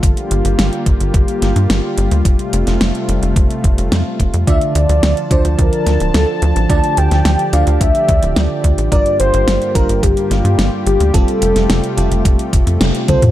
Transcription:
Already playing: analog synth pad D3 F4
0.03 analog synth bass G1, analog synth pad G3 A#3 G4, kick, closed hi-hat
0.17 closed hi-hat
0.31 analog synth bass G1, closed hi-hat
0.45 analog synth bass G1, closed hi-hat
0.59 analog synth bass G1, snare, closed hi-hat
0.73 closed hi-hat
0.86 analog synth bass G1, kick, closed hi-hat
1.00 analog synth bass G1, closed hi-hat
1.14 analog synth bass G1, kick, closed hi-hat
1.28 closed hi-hat
1.42 analog synth bass G1, snare, closed hi-hat
1.56 analog synth bass G2, closed hi-hat
1.70 analog synth bass G1, snare, closed hi-hat
1.98 analog synth bass G1, closed hi-hat
2.11 analog synth bass D2, closed hi-hat
2.25 analog synth bass F1, analog synth pad C3 A3, kick, closed hi-hat
2.39 closed hi-hat
2.53 analog synth bass F1, closed hi-hat
2.67 analog synth bass F1, snare, closed hi-hat
2.81 analog synth bass F1, snare, closed hi-hat
2.95 closed hi-hat
3.08 analog synth bass F1, closed hi-hat
3.22 analog synth bass F1, closed hi-hat
3.36 analog synth bass F1, kick, closed hi-hat
3.50 closed hi-hat
3.64 analog synth bass F1, kick, closed hi-hat
3.78 analog synth bass F1, closed hi-hat
3.92 analog synth bass F2, snare, closed hi-hat
4.20 analog synth bass F1, kick, closed hi-hat
4.34 analog synth bass F2, closed hi-hat
4.47 analog synth bass D2, analog synth pad D3 F3 A5, fm electric piano D3 A3 D4 F4 D5, soft synth lead E5, kick, closed hi-hat
4.61 closed hi-hat
4.75 analog synth bass D2, soft synth lead D5, closed hi-hat
4.89 analog synth bass D2, closed hi-hat
5.03 analog synth bass D2, snare, closed hi-hat
5.17 closed hi-hat
5.31 analog synth bass D2, fm electric piano D3 F3 D4 F4 D5, soft synth lead C5, kick, closed hi-hat
5.45 analog synth bass D2, closed hi-hat
5.58 analog synth bass D2, soft synth lead A#4, kick, closed hi-hat
5.73 closed hi-hat
5.86 analog synth bass D2, snare, closed hi-hat
6.00 analog synth bass D1, closed hi-hat
6.14 analog synth bass D2, soft synth lead A4, snare, closed hi-hat
6.42 analog synth bass D2, closed hi-hat
6.56 analog synth bass A1, closed hi-hat
6.70 analog synth bass D2, fm electric piano D3 A3 D4 F4 D5, analog synth pad G4, soft synth lead A5, kick, closed hi-hat
6.84 closed hi-hat
6.97 analog synth bass D2, soft synth lead G5, closed hi-hat
7.11 analog synth bass D2, snare, closed hi-hat
7.25 analog synth bass D2, snare, closed hi-hat
7.39 closed hi-hat
7.53 analog synth bass D2, fm electric piano D3 A3 D4 F4 D5, soft synth lead F5, closed hi-hat
7.67 analog synth bass D2, closed hi-hat
7.81 analog synth bass D2, soft synth lead E5, kick, closed hi-hat
7.95 closed hi-hat
8.09 analog synth bass D2, kick, closed hi-hat
8.23 analog synth bass D1, closed hi-hat
8.36 analog synth bass D2, soft synth lead D5, snare, closed hi-hat
8.64 analog synth bass D2, kick, closed hi-hat
8.78 analog synth bass A1, closed hi-hat
8.92 analog synth bass G1, fm electric piano G2 G3 D4 F4 A#4, analog synth pad G3 A#3 F4 G4, soft synth lead D5, kick, closed hi-hat
9.06 closed hi-hat
9.20 analog synth bass G1, soft synth lead C5, closed hi-hat
9.34 analog synth bass G1, closed hi-hat
9.47 analog synth bass G1, snare, closed hi-hat
9.62 closed hi-hat
9.75 analog synth bass G1, fm electric piano G2 G3 D4 F4 A#4, soft synth lead A#4, kick, closed hi-hat
9.89 analog synth bass G1, closed hi-hat
10.03 analog synth bass G1, soft synth lead G4, kick, closed hi-hat
10.17 closed hi-hat
10.31 analog synth bass G1, soft synth lead F4, snare, closed hi-hat
10.44 analog synth bass G2, closed hi-hat
10.58 analog synth bass G1, snare, closed hi-hat
10.86 analog synth bass G1, soft synth lead G4, closed hi-hat
11.00 analog synth bass D2, closed hi-hat
11.14 analog synth bass F1, analog synth pad C3 A3, fm electric piano G3 C4 F4 A4, soft synth lead A4, kick, closed hi-hat
11.28 closed hi-hat
11.42 analog synth bass F1, closed hi-hat
11.56 analog synth bass F1, snare, closed hi-hat
11.70 analog synth bass F1, snare, closed hi-hat
11.84 closed hi-hat
11.97 analog synth bass F1, fm electric piano G3 C4 F4 A4, closed hi-hat
12.11 analog synth bass F1, closed hi-hat
12.25 analog synth bass F1, kick, closed hi-hat
12.39 closed hi-hat
12.53 analog synth bass F1, kick, closed hi-hat
12.67 analog synth bass F2, closed hi-hat
12.81 analog synth bass F1, snare, closed hi-hat
12.95 closed hi-hat
13.08 analog synth bass C2, fm electric piano G3 C4 F4 A4, soft synth lead C5, kick, closed hi-hat, high tom
13.22 analog synth bass F2, closed hi-hat, mid tom

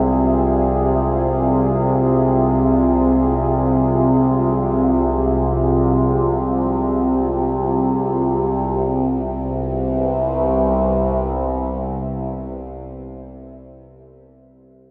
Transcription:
Already playing: synth drone C2 C3, ambient pad C4 F4 G4 G#4 E5
8.79 synth drone C2 C3, ambient pad G4
9.00 ambient pad B4
9.18 ambient pad C5
9.35 ambient pad E5

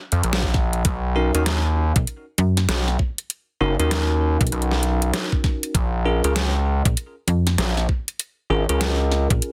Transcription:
0.12 analog synth bass F2, closed hi-hat
0.23 analog synth bass A#1, closed hi-hat
0.33 snare
0.43 kick
0.54 kick, snare
0.73 closed hi-hat
0.85 analog synth bass B1, kick, closed hi-hat
1.16 tine electric piano C#4 D#4 F#4 A#4
1.35 analog synth bass D#2, tine electric piano C#4 D#4 F#4 A#4, closed hi-hat
1.46 snare, closed hi-hat
1.96 fm bass B1, kick, closed hi-hat
2.07 closed hi-hat
2.38 fm bass F#2, closed hi-hat
2.57 snare, closed hi-hat
2.69 analog synth bass B1, snare, closed hi-hat
2.88 snare
2.99 kick
3.18 closed hi-hat
3.30 closed hi-hat
3.61 analog synth bass F#1, tine electric piano C#4 D#4 F#4 A#4
3.79 analog synth bass D#2, tine electric piano C#4 D#4 F#4 A#4, closed hi-hat
3.91 snare, closed hi-hat
4.41 fm bass B1, kick, closed hi-hat
4.47 closed hi-hat
4.52 analog synth bass B1, closed hi-hat
4.62 closed hi-hat
4.71 snare
4.83 closed hi-hat
5.02 closed hi-hat
5.14 snare, closed hi-hat
5.32 kick
5.44 kick, snare
5.63 closed hi-hat
5.75 analog synth bass A#1, kick, closed hi-hat
6.06 tine electric piano C#4 F4 G#4 A#4
6.24 analog synth bass C#2, tine electric piano C#4 F4 G#4 A#4, closed hi-hat
6.36 snare, closed hi-hat
6.85 fm bass A#1, kick, closed hi-hat
6.97 closed hi-hat
7.28 fm bass F2, closed hi-hat
7.47 snare, closed hi-hat
7.58 analog synth bass A#1, snare, closed hi-hat
7.77 snare
7.89 kick
8.08 closed hi-hat
8.20 closed hi-hat
8.50 analog synth bass G#1, tine electric piano C#4 F4 G#4 A#4
8.69 analog synth bass C#2, tine electric piano C#4 F4 G#4 A#4, closed hi-hat
8.81 snare, closed hi-hat
9.12 snare
9.30 fm bass A#1, kick, closed hi-hat
9.42 closed hi-hat

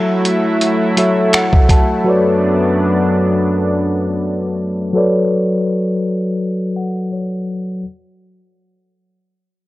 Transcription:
Already playing: tine electric piano F#3 F#4 A4 C#5 E5, analog synth pad F#3 A3 E4
0.25 closed hi-hat
0.61 closed hi-hat
0.97 tine electric piano F#3 F#4 A4 C#5 E5, closed hi-hat
1.33 tine electric piano F#5, finger snap, closed hi-hat
1.53 kick
1.69 tine electric piano A5, kick, closed hi-hat
2.04 analog synth pad F#2 B3 D4, tine electric piano F#3 F#4 A4 B4 C#5
2.09 tine electric piano D5
4.93 tine electric piano F#3 F#4 A4 B4 C#5
4.98 tine electric piano D5
6.76 tine electric piano F#5
7.12 tine electric piano C#5

